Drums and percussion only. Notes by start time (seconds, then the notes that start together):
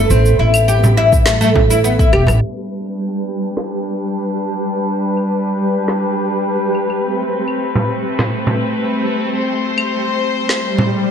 0.10 cabasa
0.26 cabasa
0.54 cabasa, claves
0.69 cabasa
0.84 frame drum, cabasa
1.13 kick, cabasa
1.26 snare, cabasa
1.42 cabasa
1.55 kick, frame drum
1.71 cabasa
1.85 cabasa
1.99 kick, cabasa
2.13 cross-stick, claves
2.27 cross-stick, frame drum, cabasa, claves
2.86 claves
3.57 snare
5.17 claves
5.88 snare
6.75 claves
6.90 claves
7.48 claves
7.75 frame drum
8.19 snare, frame drum
8.47 frame drum
9.78 claves
10.49 snare
10.78 frame drum